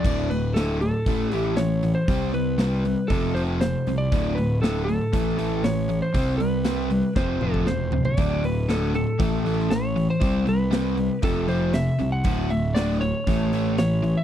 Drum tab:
CC |x---------------|----------------|----------------|----------------|
HH |--o-o-o-o-o-o-o-|o-o-o-o-o-o-o-o-|o-o-o-o-o-o-o-o-|o-o-o-o---------|
SD |----o-------o-o-|----o-------o-o-|----o-------o---|----o---o---o---|
T2 |----------------|----------------|----------------|----------o-----|
FT |----------------|----------------|----------------|--------------oo|
BD |o-------o-------|o-------o-------|o-------o-------|o-------o--o----|

CC |----------------|----------------|----------------|
HH |o-o-o-o-o-o-o-o-|o-o-o-o-o-o-o-o-|o-o-o-o-o-o-o-o-|
SD |----o------oo---|----o-------o-o-|----o-------o---|
T2 |----------------|----------------|----------------|
FT |----------------|----------------|----------------|
BD |o-------o-------|o-------o-------|o-------o-------|